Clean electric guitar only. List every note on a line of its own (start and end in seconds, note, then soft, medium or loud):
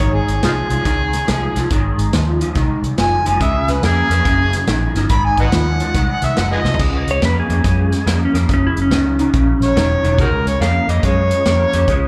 0.00 0.40 G#2 medium
0.00 0.40 D#3 medium
0.43 0.68 G#2 medium
0.43 0.68 F3 loud
0.71 0.84 G#2 medium
0.71 0.84 F3 medium
0.85 1.25 G#2 medium
0.85 1.25 D#3 medium
1.27 1.53 G#2 medium
1.27 1.53 F3 loud
1.56 1.69 G#2 medium
1.56 1.69 F3 medium
1.70 2.10 G#2 medium
1.70 2.10 D#3 medium
2.13 2.38 G#2 medium
2.13 2.39 F3 loud
2.41 2.54 G#2 medium
2.41 2.55 F3 medium
2.56 2.95 G#2 medium
2.56 2.96 D#3 medium
2.98 3.23 G#2 medium
2.98 3.23 F3 medium
3.26 3.39 G#2 medium
3.26 3.39 F3 medium
3.40 3.80 C#3 medium
3.40 3.80 G#3 loud
3.83 4.08 C#3 medium
3.83 4.08 A#3 loud
4.11 4.24 C#3 medium
4.11 4.24 A#3 medium
4.25 4.65 F#2 medium
4.25 4.65 C#3 medium
4.68 4.93 F#2 medium
4.68 4.93 D#3 medium
4.95 5.09 F#2 medium
4.95 5.09 D#3 medium
5.10 5.49 G#2 medium
5.10 5.50 D#3 loud
5.52 5.77 G#2 loud
5.52 5.77 F3 medium
5.80 5.93 G#2 medium
5.80 5.94 F3 medium
5.94 6.34 G#2 medium
5.94 6.34 D#3 medium
6.37 6.62 G#2 medium
6.37 6.62 F3 medium
6.64 6.78 G#2 medium
6.64 6.78 F3 medium
6.79 7.19 C#3 medium
6.79 7.19 G#3 medium
7.22 7.47 C#3 medium
7.22 7.47 A#3 loud
7.49 7.62 C#3 medium
7.49 7.63 A#3 medium
7.63 8.03 C#3 medium
7.63 8.04 G#3 medium
8.06 8.31 C#3 medium
8.06 8.32 A#3 medium
8.34 8.47 C#3 medium
8.34 8.48 A#3 medium
8.49 8.88 F#2 medium
8.49 8.89 C#3 loud
8.91 9.16 F#2 loud
8.91 9.16 D#3 medium
9.19 9.32 F#2 medium
9.19 9.32 D#3 medium
9.33 9.73 F#2 medium
9.33 9.73 C#3 medium
9.76 10.01 F#2 medium
9.76 10.01 D#3 loud
10.03 10.17 F#2 medium
10.03 10.17 D#3 medium
10.18 10.58 C#3 medium
10.18 10.58 G#3 loud
10.61 10.86 C#3 medium
10.61 10.86 A#3 medium
10.89 11.02 C#3 medium
10.89 11.02 A#3 medium
11.03 11.43 C#3 medium
11.03 11.43 G#3 medium
11.45 11.70 C#3 medium
11.45 11.71 A#3 medium
11.74 11.87 C#3 medium
11.74 11.87 A#3 medium
11.88 12.08 C#3 medium
11.88 12.08 G#3 medium